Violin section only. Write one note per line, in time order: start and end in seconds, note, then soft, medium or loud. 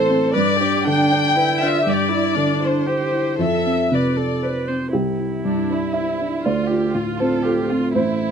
0.00 0.34 C5 loud
0.34 0.84 D5 medium
0.85 1.58 G5 loud
1.60 1.85 E5 medium
1.86 2.62 D5 medium
2.61 3.39 C5 medium
3.40 3.92 E5 medium
3.92 4.69 D5 medium
5.45 5.68 D4 soft
5.70 6.46 E4 soft
6.45 6.70 F4 medium
6.71 6.96 G4 soft
6.94 7.20 F4 soft
7.19 7.45 A4 soft
7.45 7.70 G4 soft
7.69 7.95 F4 medium
7.94 8.31 E4 medium